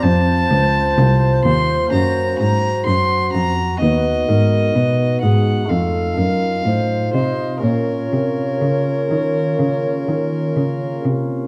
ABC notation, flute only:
X:1
M:4/4
L:1/8
Q:1/4=63
K:Bbm
V:1 name="Flute"
c6- c z | =B _B =B A =A _B c e | d6- d z |]